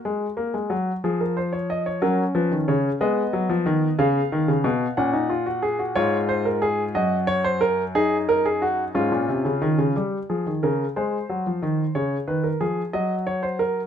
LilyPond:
<<
  \new Staff \with { instrumentName = "Grand piano" } { \time 6/8 \key fis \major \tempo 4. = 61 << { fis'4. gis'16 ais'16 bis'16 cis''16 dis''16 cis''16 | ais'8 b'8 cis''8 dis''4. | eis''4. fis''4. | cis''8 bis'16 ais'16 gis'8 dis''8 cis''16 bis'16 ais'8 |
gis'8 ais'16 gis'16 fis'8 eis'4. | g'8 gis'8 ais'8 bis'4. | cis''8 b'16 ais'16 gis'8 dis''8 cis''16 bis'16 ais'8 | } \\ { gis8 ais16 gis16 fis8 eis4. | cis'4. b4.~ | b4. cis'16 dis'16 eis'16 fis'16 gis'16 fis'16 | eis'4. fis'4. |
dis'4. cis'4. | r2. | r2. | } >> }
  \new Staff \with { instrumentName = "Grand piano" } { \clef bass \time 6/8 \key fis \major r2. | fis8 eis16 dis16 cis8 gis8 fis16 eis16 dis8 | cis8 dis16 cis16 b,8 ais,4. | gis,4. fis,4.~ |
fis,4. gis,16 ais,16 bis,16 cis16 dis16 cis16 | g8 eis16 dis16 cis8 gis8 fis16 eis16 dis8 | cis8 dis8 eis8 fis4. | }
>>